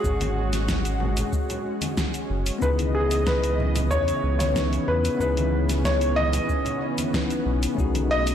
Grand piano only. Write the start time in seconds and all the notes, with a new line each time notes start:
Already playing: G#4
2.62 B4
2.95 G#4
3.27 B4
3.91 C#5
4.39 C#5
4.88 B4
5.20 B4
5.85 C#5
6.16 D#5
8.11 D#5